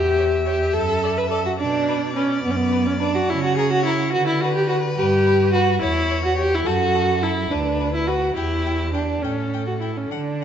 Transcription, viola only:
0, 0, Header, 1, 2, 480
1, 0, Start_track
1, 0, Tempo, 563910
1, 1364, Time_signature, 6, 3, 24, 8
1, 6633, Tempo, 580833
1, 8824, End_track
2, 0, Start_track
2, 0, Title_t, "Viola"
2, 0, Program_c, 0, 41
2, 0, Note_on_c, 0, 67, 83
2, 385, Note_off_c, 0, 67, 0
2, 391, Note_on_c, 0, 67, 78
2, 628, Note_on_c, 0, 69, 86
2, 640, Note_off_c, 0, 67, 0
2, 1003, Note_on_c, 0, 71, 74
2, 1016, Note_off_c, 0, 69, 0
2, 1103, Note_off_c, 0, 71, 0
2, 1108, Note_on_c, 0, 69, 77
2, 1233, Note_off_c, 0, 69, 0
2, 1242, Note_on_c, 0, 66, 76
2, 1290, Note_off_c, 0, 66, 0
2, 1354, Note_on_c, 0, 62, 82
2, 1827, Note_off_c, 0, 62, 0
2, 1836, Note_on_c, 0, 61, 70
2, 2069, Note_off_c, 0, 61, 0
2, 2074, Note_on_c, 0, 59, 74
2, 2132, Note_on_c, 0, 61, 65
2, 2145, Note_off_c, 0, 59, 0
2, 2182, Note_on_c, 0, 59, 75
2, 2195, Note_off_c, 0, 61, 0
2, 2438, Note_on_c, 0, 61, 78
2, 2451, Note_off_c, 0, 59, 0
2, 2551, Note_off_c, 0, 61, 0
2, 2557, Note_on_c, 0, 62, 80
2, 2680, Note_on_c, 0, 66, 76
2, 2693, Note_off_c, 0, 62, 0
2, 2808, Note_on_c, 0, 64, 87
2, 2821, Note_off_c, 0, 66, 0
2, 2923, Note_off_c, 0, 64, 0
2, 2928, Note_on_c, 0, 66, 83
2, 3038, Note_off_c, 0, 66, 0
2, 3043, Note_on_c, 0, 68, 89
2, 3158, Note_off_c, 0, 68, 0
2, 3172, Note_on_c, 0, 66, 87
2, 3275, Note_off_c, 0, 66, 0
2, 3280, Note_on_c, 0, 64, 84
2, 3508, Note_off_c, 0, 64, 0
2, 3513, Note_on_c, 0, 66, 96
2, 3632, Note_off_c, 0, 66, 0
2, 3639, Note_on_c, 0, 64, 79
2, 3752, Note_on_c, 0, 66, 87
2, 3765, Note_off_c, 0, 64, 0
2, 3872, Note_off_c, 0, 66, 0
2, 3876, Note_on_c, 0, 67, 81
2, 3979, Note_off_c, 0, 67, 0
2, 3984, Note_on_c, 0, 66, 85
2, 4052, Note_off_c, 0, 66, 0
2, 4227, Note_on_c, 0, 67, 100
2, 4698, Note_off_c, 0, 67, 0
2, 4709, Note_on_c, 0, 66, 89
2, 4943, Note_off_c, 0, 66, 0
2, 4951, Note_on_c, 0, 64, 92
2, 5301, Note_off_c, 0, 64, 0
2, 5322, Note_on_c, 0, 66, 80
2, 5426, Note_off_c, 0, 66, 0
2, 5432, Note_on_c, 0, 67, 87
2, 5572, Note_on_c, 0, 64, 76
2, 5585, Note_off_c, 0, 67, 0
2, 5677, Note_on_c, 0, 66, 90
2, 5690, Note_off_c, 0, 64, 0
2, 6153, Note_on_c, 0, 64, 80
2, 6166, Note_off_c, 0, 66, 0
2, 6391, Note_on_c, 0, 62, 80
2, 6404, Note_off_c, 0, 64, 0
2, 6750, Note_off_c, 0, 62, 0
2, 6757, Note_on_c, 0, 64, 72
2, 6866, Note_on_c, 0, 66, 71
2, 6878, Note_off_c, 0, 64, 0
2, 7099, Note_off_c, 0, 66, 0
2, 7104, Note_on_c, 0, 64, 76
2, 7571, Note_off_c, 0, 64, 0
2, 7581, Note_on_c, 0, 62, 62
2, 7814, Note_on_c, 0, 61, 63
2, 7827, Note_off_c, 0, 62, 0
2, 8179, Note_off_c, 0, 61, 0
2, 8185, Note_on_c, 0, 66, 56
2, 8233, Note_off_c, 0, 66, 0
2, 8301, Note_on_c, 0, 64, 47
2, 8434, Note_on_c, 0, 61, 48
2, 8446, Note_off_c, 0, 64, 0
2, 8539, Note_on_c, 0, 62, 56
2, 8551, Note_off_c, 0, 61, 0
2, 8824, Note_off_c, 0, 62, 0
2, 8824, End_track
0, 0, End_of_file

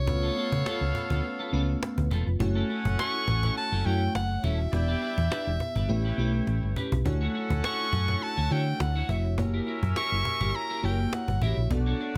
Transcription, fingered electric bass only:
0, 0, Header, 1, 2, 480
1, 0, Start_track
1, 0, Tempo, 581395
1, 62, Time_signature, 4, 2, 24, 8
1, 10052, End_track
2, 0, Start_track
2, 0, Title_t, "Fingered electric bass"
2, 0, Program_c, 0, 33
2, 62, Note_on_c, 0, 37, 110
2, 239, Note_off_c, 0, 37, 0
2, 433, Note_on_c, 0, 49, 91
2, 514, Note_off_c, 0, 49, 0
2, 669, Note_on_c, 0, 37, 100
2, 752, Note_off_c, 0, 37, 0
2, 912, Note_on_c, 0, 38, 90
2, 994, Note_off_c, 0, 38, 0
2, 1261, Note_on_c, 0, 37, 83
2, 1439, Note_off_c, 0, 37, 0
2, 1634, Note_on_c, 0, 38, 88
2, 1715, Note_off_c, 0, 38, 0
2, 1745, Note_on_c, 0, 28, 86
2, 1840, Note_off_c, 0, 28, 0
2, 1873, Note_on_c, 0, 29, 92
2, 1954, Note_off_c, 0, 29, 0
2, 1983, Note_on_c, 0, 30, 117
2, 2160, Note_off_c, 0, 30, 0
2, 2355, Note_on_c, 0, 30, 93
2, 2436, Note_off_c, 0, 30, 0
2, 2705, Note_on_c, 0, 33, 89
2, 2882, Note_off_c, 0, 33, 0
2, 3073, Note_on_c, 0, 30, 87
2, 3155, Note_off_c, 0, 30, 0
2, 3184, Note_on_c, 0, 42, 94
2, 3361, Note_off_c, 0, 42, 0
2, 3425, Note_on_c, 0, 30, 81
2, 3602, Note_off_c, 0, 30, 0
2, 3664, Note_on_c, 0, 27, 91
2, 3841, Note_off_c, 0, 27, 0
2, 3904, Note_on_c, 0, 28, 108
2, 4081, Note_off_c, 0, 28, 0
2, 4275, Note_on_c, 0, 40, 94
2, 4356, Note_off_c, 0, 40, 0
2, 4517, Note_on_c, 0, 28, 94
2, 4597, Note_off_c, 0, 28, 0
2, 4752, Note_on_c, 0, 31, 93
2, 4835, Note_off_c, 0, 31, 0
2, 4864, Note_on_c, 0, 33, 92
2, 5041, Note_off_c, 0, 33, 0
2, 5101, Note_on_c, 0, 35, 89
2, 5279, Note_off_c, 0, 35, 0
2, 5343, Note_on_c, 0, 33, 83
2, 5439, Note_off_c, 0, 33, 0
2, 5473, Note_on_c, 0, 31, 80
2, 5555, Note_off_c, 0, 31, 0
2, 5714, Note_on_c, 0, 35, 89
2, 5796, Note_off_c, 0, 35, 0
2, 5825, Note_on_c, 0, 38, 106
2, 6002, Note_off_c, 0, 38, 0
2, 6195, Note_on_c, 0, 38, 103
2, 6276, Note_off_c, 0, 38, 0
2, 6546, Note_on_c, 0, 42, 91
2, 6723, Note_off_c, 0, 42, 0
2, 6915, Note_on_c, 0, 38, 98
2, 6996, Note_off_c, 0, 38, 0
2, 7026, Note_on_c, 0, 50, 87
2, 7203, Note_off_c, 0, 50, 0
2, 7267, Note_on_c, 0, 38, 89
2, 7443, Note_off_c, 0, 38, 0
2, 7504, Note_on_c, 0, 29, 99
2, 7744, Note_off_c, 0, 29, 0
2, 7744, Note_on_c, 0, 30, 102
2, 7921, Note_off_c, 0, 30, 0
2, 8114, Note_on_c, 0, 42, 98
2, 8195, Note_off_c, 0, 42, 0
2, 8355, Note_on_c, 0, 30, 92
2, 8436, Note_off_c, 0, 30, 0
2, 8593, Note_on_c, 0, 31, 83
2, 8675, Note_off_c, 0, 31, 0
2, 8944, Note_on_c, 0, 30, 93
2, 9121, Note_off_c, 0, 30, 0
2, 9315, Note_on_c, 0, 31, 87
2, 9396, Note_off_c, 0, 31, 0
2, 9426, Note_on_c, 0, 33, 91
2, 9521, Note_off_c, 0, 33, 0
2, 9554, Note_on_c, 0, 34, 87
2, 9636, Note_off_c, 0, 34, 0
2, 9664, Note_on_c, 0, 35, 108
2, 9841, Note_off_c, 0, 35, 0
2, 10052, End_track
0, 0, End_of_file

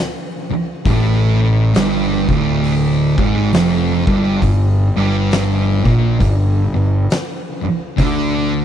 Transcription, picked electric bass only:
0, 0, Header, 1, 3, 480
1, 0, Start_track
1, 0, Key_signature, -1, "minor"
1, 0, Tempo, 890340
1, 463, Time_signature, 4, 2, 24, 8
1, 4663, End_track
2, 0, Start_track
2, 0, Title_t, "Picked electric bass"
2, 0, Program_c, 0, 34
2, 463, Note_on_c, 0, 33, 95
2, 921, Note_off_c, 0, 33, 0
2, 944, Note_on_c, 0, 31, 91
2, 1215, Note_off_c, 0, 31, 0
2, 1232, Note_on_c, 0, 26, 93
2, 1692, Note_off_c, 0, 26, 0
2, 1712, Note_on_c, 0, 32, 91
2, 1888, Note_off_c, 0, 32, 0
2, 1907, Note_on_c, 0, 29, 100
2, 2177, Note_off_c, 0, 29, 0
2, 2193, Note_on_c, 0, 31, 97
2, 2369, Note_off_c, 0, 31, 0
2, 2381, Note_on_c, 0, 31, 84
2, 2653, Note_off_c, 0, 31, 0
2, 2675, Note_on_c, 0, 31, 90
2, 3133, Note_off_c, 0, 31, 0
2, 3156, Note_on_c, 0, 34, 91
2, 3330, Note_off_c, 0, 34, 0
2, 3343, Note_on_c, 0, 31, 76
2, 3614, Note_off_c, 0, 31, 0
2, 3637, Note_on_c, 0, 31, 79
2, 3811, Note_off_c, 0, 31, 0
2, 4307, Note_on_c, 0, 38, 92
2, 4663, Note_off_c, 0, 38, 0
2, 4663, End_track
3, 0, Start_track
3, 0, Title_t, "Muted picked electric bass strokes"
3, 272, Note_on_c, 9, 29, 41
3, 326, Note_off_c, 9, 29, 0
3, 4115, Note_on_c, 9, 29, 42
3, 4169, Note_off_c, 9, 29, 0
3, 4663, End_track
0, 0, End_of_file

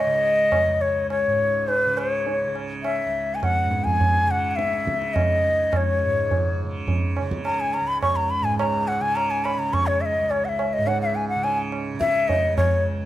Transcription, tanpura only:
0, 0, Header, 1, 2, 480
1, 0, Start_track
1, 0, Tempo, 578035
1, 916, Time_signature, 4, 2, 24, 8
1, 5711, Tempo, 569260
1, 10920, End_track
2, 0, Start_track
2, 0, Title_t, "Tanpura"
2, 0, Program_c, 0, 104
2, 0, Note_on_c, 0, 37, 59
2, 0, Note_on_c, 0, 44, 53
2, 0, Note_on_c, 0, 49, 57
2, 53, Note_off_c, 0, 49, 0
2, 53, Note_on_c, 0, 49, 58
2, 546, Note_off_c, 0, 37, 0
2, 550, Note_on_c, 0, 37, 57
2, 1046, Note_off_c, 0, 44, 0
2, 1049, Note_on_c, 0, 44, 57
2, 1545, Note_off_c, 0, 49, 0
2, 1545, Note_on_c, 0, 49, 59
2, 2045, Note_off_c, 0, 49, 0
2, 2045, Note_on_c, 0, 49, 60
2, 2537, Note_off_c, 0, 37, 0
2, 2541, Note_on_c, 0, 37, 57
2, 3030, Note_off_c, 0, 44, 0
2, 3033, Note_on_c, 0, 44, 55
2, 3534, Note_off_c, 0, 49, 0
2, 3534, Note_on_c, 0, 49, 56
2, 4031, Note_off_c, 0, 49, 0
2, 4031, Note_on_c, 0, 49, 59
2, 4522, Note_off_c, 0, 37, 0
2, 4526, Note_on_c, 0, 37, 57
2, 5009, Note_off_c, 0, 44, 0
2, 5012, Note_on_c, 0, 44, 56
2, 5501, Note_off_c, 0, 49, 0
2, 5501, Note_on_c, 0, 49, 64
2, 5997, Note_off_c, 0, 49, 0
2, 5997, Note_on_c, 0, 49, 59
2, 6496, Note_off_c, 0, 37, 0
2, 6500, Note_on_c, 0, 37, 58
2, 7000, Note_off_c, 0, 44, 0
2, 7003, Note_on_c, 0, 44, 59
2, 7503, Note_off_c, 0, 49, 0
2, 7503, Note_on_c, 0, 49, 62
2, 7990, Note_off_c, 0, 49, 0
2, 7990, Note_on_c, 0, 49, 59
2, 8498, Note_off_c, 0, 37, 0
2, 8501, Note_on_c, 0, 37, 59
2, 8998, Note_off_c, 0, 44, 0
2, 9001, Note_on_c, 0, 44, 65
2, 9489, Note_off_c, 0, 49, 0
2, 9489, Note_on_c, 0, 49, 59
2, 9983, Note_off_c, 0, 49, 0
2, 9983, Note_on_c, 0, 49, 59
2, 10468, Note_off_c, 0, 37, 0
2, 10472, Note_on_c, 0, 37, 60
2, 10920, Note_off_c, 0, 37, 0
2, 10920, Note_off_c, 0, 44, 0
2, 10920, Note_off_c, 0, 49, 0
2, 10920, End_track
0, 0, End_of_file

